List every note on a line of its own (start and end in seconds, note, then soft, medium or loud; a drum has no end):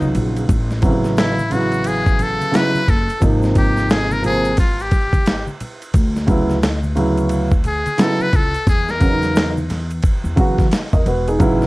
0.00 0.14 C#2 medium
0.00 0.43 C#3 medium
0.00 0.44 F#3 medium
0.00 0.44 B3 medium
0.00 0.12 D#4 medium
0.00 0.48 D#4 medium
0.00 high conga medium
0.00 shaker soft
0.15 0.46 A#1 medium
0.15 ride medium
0.15 low conga medium
0.15 shaker soft
0.36 ride soft
0.36 shaker soft
0.49 2.37 A1 medium
0.49 kick loud
0.49 ride medium
0.49 shaker medium
0.71 snare soft
0.71 shaker soft
0.81 0.90 C3 medium
0.81 1.34 F#3 medium
0.81 1.34 B3 medium
0.81 1.35 E4 medium
0.81 kick medium
0.81 ride medium
0.81 high conga soft
0.81 shaker soft
0.88 1.36 C#3 medium
1.04 snare soft
1.04 shaker soft
1.17 1.54 E4 medium
1.17 snare loud
1.17 hi-hat pedal soft
1.17 ride medium
1.17 shaker medium
1.39 high conga medium
1.39 shaker soft
1.50 2.48 C#3 medium
1.50 2.48 F#3 soft
1.50 2.49 B3 medium
1.50 2.50 E4 medium
1.50 1.89 F#4 medium
1.50 ride medium
1.50 low conga medium
1.50 shaker soft
1.72 ride soft
1.72 shaker soft
1.84 2.24 G#4 medium
1.84 ride medium
1.84 shaker medium
2.06 kick medium
2.06 shaker soft
2.19 2.57 A4 medium
2.19 ride soft
2.19 low conga medium
2.19 shaker soft
2.41 ride soft
2.41 high conga medium
2.41 shaker soft
2.51 2.79 C#3 medium
2.51 2.80 F#3 medium
2.51 2.80 B3 medium
2.51 2.81 E4 medium
2.51 snare loud
2.51 hi-hat pedal soft
2.51 ride medium
2.51 shaker medium
2.56 2.91 B4 loud
2.75 high conga medium
2.75 shaker soft
2.88 3.07 F#1 medium
2.88 3.23 A4 medium
2.88 kick medium
2.88 ride medium
2.88 low conga medium
2.88 shaker soft
3.09 ride soft
3.09 shaker soft
3.20 5.44 G#1 loud
3.20 4.18 C3 medium
3.20 4.19 F3 medium
3.20 4.19 A#3 medium
3.20 4.20 D#4 medium
3.20 kick loud
3.20 ride medium
3.20 shaker medium
3.43 snare soft
3.43 shaker soft
3.55 3.92 G4 medium
3.55 kick medium
3.55 ride medium
3.55 high conga soft
3.55 shaker soft
3.77 snare soft
3.77 shaker soft
3.89 4.14 G#4 medium
3.89 snare loud
3.89 hi-hat pedal soft
3.89 ride medium
3.89 shaker medium
4.11 4.25 A#4 medium
4.11 high conga medium
4.11 shaker soft
4.22 4.49 C3 medium
4.22 4.50 F3 medium
4.22 4.50 A#3 medium
4.22 4.51 C4 medium
4.22 ride medium
4.22 low conga medium
4.22 shaker soft
4.26 4.57 G#4 loud
4.45 ride soft
4.45 shaker soft
4.57 4.83 F4 medium
4.57 kick medium
4.57 ride medium
4.57 shaker medium
4.79 5.49 G4 medium
4.79 shaker soft
4.91 kick medium
4.91 ride medium
4.91 low conga medium
4.91 shaker soft
5.13 kick medium
5.13 ride soft
5.13 high conga medium
5.13 shaker soft
5.26 snare loud
5.26 hi-hat pedal soft
5.26 ride medium
5.26 shaker medium
5.47 high conga medium
5.47 shaker soft
5.60 ride medium
5.60 low conga medium
5.60 shaker soft
5.82 ride soft
5.82 shaker soft
5.94 7.82 D2 loud
5.94 kick loud
5.94 ride medium
5.94 shaker medium
6.16 snare soft
6.16 shaker soft
6.27 6.54 C#3 medium
6.27 6.55 F#3 medium
6.27 6.55 B3 medium
6.27 6.56 E4 medium
6.27 kick medium
6.27 ride medium
6.27 high conga soft
6.27 shaker soft
6.50 snare soft
6.50 shaker medium
6.63 snare loud
6.63 hi-hat pedal soft
6.63 ride medium
6.63 shaker medium
6.83 high conga medium
6.83 shaker soft
6.95 7.47 C#3 medium
6.95 7.48 F#3 medium
6.95 7.48 B3 medium
6.95 7.49 E4 medium
6.95 ride medium
6.95 low conga medium
6.95 shaker soft
7.17 ride soft
7.17 shaker soft
7.29 ride medium
7.29 shaker medium
7.51 kick medium
7.51 shaker soft
7.64 8.03 G#4 medium
7.64 ride soft
7.64 low conga medium
7.64 shaker soft
7.86 ride soft
7.86 high conga medium
7.86 shaker soft
7.98 8.25 C#3 medium
7.98 8.25 F#3 medium
7.98 8.26 B3 medium
7.98 8.26 E4 medium
7.98 snare loud
7.98 hi-hat pedal medium
7.98 ride medium
7.98 shaker medium
8.02 8.23 A4 loud
8.20 8.37 B4 loud
8.20 high conga medium
8.20 shaker soft
8.33 8.52 C#2 medium
8.33 8.68 A4 medium
8.33 kick medium
8.33 ride medium
8.33 low conga medium
8.33 shaker soft
8.54 ride soft
8.54 shaker soft
8.67 10.00 E2 loud
8.67 8.92 G#4 medium
8.67 kick loud
8.67 ride medium
8.67 shaker medium
8.88 9.58 A#4 medium
8.88 snare soft
8.88 shaker soft
9.00 9.52 C#3 medium
9.00 9.52 F#3 soft
9.00 9.53 B3 soft
9.00 9.10 C#4 soft
9.00 kick medium
9.00 ride medium
9.00 high conga soft
9.00 shaker soft
9.10 9.56 D#4 medium
9.22 snare soft
9.22 ride soft
9.22 shaker soft
9.35 snare loud
9.35 hi-hat pedal soft
9.35 ride medium
9.35 high conga soft
9.35 shaker medium
9.57 high conga medium
9.57 shaker soft
9.70 snare soft
9.70 ride medium
9.70 low conga medium
9.70 shaker soft
9.90 ride soft
9.90 shaker soft
10.03 kick medium
10.03 ride medium
10.03 shaker medium
10.24 10.36 E2 medium
10.24 shaker soft
10.36 10.63 C#3 medium
10.36 10.69 E3 medium
10.36 10.64 F#3 medium
10.36 10.64 B3 medium
10.36 10.65 F#4 medium
10.36 kick medium
10.36 ride medium
10.36 low conga medium
10.36 shaker soft
10.58 kick medium
10.58 snare soft
10.58 ride soft
10.58 high conga medium
10.58 shaker soft
10.71 snare loud
10.71 hi-hat pedal medium
10.71 ride medium
10.71 shaker medium
10.93 11.05 E2 medium
10.93 11.06 A#4 medium
10.93 11.06 D#5 medium
10.93 kick medium
10.93 high conga medium
10.93 shaker soft
11.06 11.37 E1 medium
11.06 11.27 F#4 medium
11.06 11.26 B4 medium
11.06 ride medium
11.06 low conga medium
11.06 shaker soft
11.28 11.60 D#4 medium
11.28 11.60 G#4 medium
11.28 ride soft
11.28 shaker soft
11.39 11.67 A1 loud
11.39 11.66 C#3 medium
11.39 11.66 F#3 medium
11.39 11.67 B3 medium
11.39 11.67 E4 medium
11.39 kick loud
11.39 ride medium
11.39 shaker medium
11.62 snare soft
11.62 shaker soft